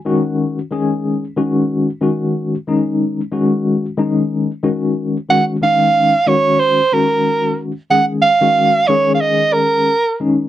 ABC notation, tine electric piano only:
X:1
M:4/4
L:1/16
Q:"Swing 16ths" 1/4=92
K:Ebm
V:1 name="Tine electric piano"
[E,A,DG]3 z [E,A,DA]3 z [E,A,DG]3 z [E,A,DG]3 z | [E,A,DE]3 z [E,A,DG]3 z [E,A,DE]3 z [E,A,DG]3 z | [E,A,DG]2 [E,A,DE]3 z [E,A,DG]3 z [E,A,DG]4- [E,A,DG] z | [E,A,DA]2 z [E,A,DG]2 z [E,A,DA]6 z2 [E,A,DE]2 |]